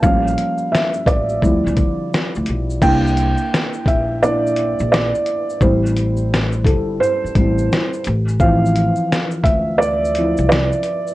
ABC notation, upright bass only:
X:1
M:4/4
L:1/16
Q:"Swing 16ths" 1/4=86
K:Dm
V:1 name="Upright bass" clef=bass
A,,,2 z4 A,,,2 D,, D,, D,2 z D,, =B,,,2 | C,,3 z3 B,,,4- B,,, B,,,2 z3 | A,,,6 G,,,2 z2 A,,,2 z2 A,,,2- | A,,,3 z3 D,,4- D,, C,,2 z3 |]